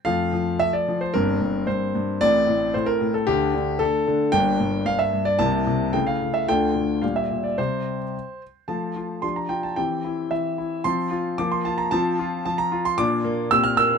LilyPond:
<<
  \new Staff \with { instrumentName = "Grand piano" } { \time 2/4 \key f \major \tempo 4 = 112 << { f''4 e''16 d''8 c''16 | bes'4 c''4 | d''4 c''16 bes'8 a'16 | g'4 a'4 |
g''4 f''16 e''8 d''16 | a''4 g''16 f''8 e''16 | g''4 f''16 e''8 d''16 | c''4. r8 |
a''4 c'''16 bes''16 g''16 a''16 | g''4 e''4 | c'''4 d'''16 c'''16 a''16 bes''16 | a''4 a''16 bes''8 c'''16 |
d'''4 e'''16 f'''16 e'''8 | } \\ { <a f'>2 | <bes c'>2 | <a c'>2 | <a d'>2 |
<bes d'>2 | <bes e'>4 <a e'>4 | <a f'>4 <g g'>4 | r2 |
<a f'>4 <d' g'>4 | <c' g'>2 | <c' f'>4 <bes f'>4 | <c' f'>2 |
<d' f'>4 <c' g'>4 | } >> }
  \new Staff \with { instrumentName = "Grand piano" } { \clef bass \time 2/4 \key f \major <f, f>8 f8 f8 f8 | <g,, g,>8 g,8 g,8 g,8 | <a,, a,>8 a,8 a,8 a,8 | <d, d>8 d8 d8 d8 |
<g,, g,>8 g,8 g,8 g,8 | <c, c>8 c8 cis8 cis8 | <d, d>8 d8 bes,8 bes,8 | <c g g'>4 r4 |
f8 f'8 f8 f'8 | e8 e'8 e8 e'8 | f8 f'8 f8 f'8 | f8 f'8 f8 f'8 |
bes,8 bes8 bes,8 bes8 | }
>>